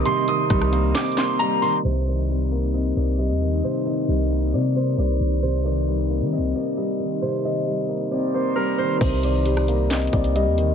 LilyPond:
<<
  \new Staff \with { instrumentName = "Harp" } { \time 4/4 \key c \minor \tempo 4 = 134 c'''8 ees'''4. d'''8 c'''8 bes''8 c'''8 | c''8 d''4. ees''8 d''8 ees''4 | c''8 ees''4. d''8 c''8 d''4 | c''8 d''4. ees''8 d''8 ees''4 |
c''8 ees''4. d''8 c''8 bes'8 c''8 | c''8 d''4. ees''8 d''8 ees''4 | }
  \new Staff \with { instrumentName = "Ambient pad" } { \time 4/4 \key c \minor << { <c' bes'>1 | <c' bes'>1~ | <c' bes'>1~ | <c' bes'>1~ |
<c' bes'>1 | r1 | } \\ { ees''1 | ees'1~ | ees'1 | ees'1~ |
ees'1 | r1 | } >> }
  \new Staff \with { instrumentName = "Grand piano" } { \clef bass \time 4/4 \key c \minor <c ees g bes c'>8 ees8 g8 bes8 c'8 bes8 g8 ees8 | c8 ees8 g8 bes8 c'8 bes8 g8 ees8 | c8 ees8 g8 bes8 c'8 bes8 g8 ees8 | c8 ees8 g8 bes8 c'8 bes8 g8 ees8 |
c8 ees8 g8 bes8 c'8 bes8 g8 ees8 | c8 ees8 g8 bes8 c'8 bes8 g8 ees8 | }
  \new Staff \with { instrumentName = "808-style bass" } { \clef bass \time 4/4 \key c \minor r4 c,4 r2 | c,2~ c,8 c,8. ees,8. | r4 c,4 c4 c,8 c,8~ | c,4.~ c,16 ees16. c,16. r4. |
r1 | c,2~ c,8 c,8. ees,8. | }
  \new DrumStaff \with { instrumentName = "Drums" } \drummode { \time 4/4 hh8 hh8 <hh bd ss>16 ss16 hh8 <hc hh sn>32 hh32 hh32 hh32 <hc hh sn>8 hh8 hho8 | r8 hh8 hh8 hh8 hh32 hh32 hh32 hh32 hh16 hh16 hh8 hh8 | hh8 hh8 hh8 hh8 hh8 hh8 hh8 hh8 | hh8 hh8 hh8 hh8 hh32 hh32 hh32 hh32 hh16 hh16 hh8 hh8 |
r4 r4 r4 r4 | <cymc hh bd>8 hh8 hh16 ss16 hh8 <hc hh sn>32 hh32 hh32 hh32 <hh bd>16 hh16 hh8 hh8 | }
>>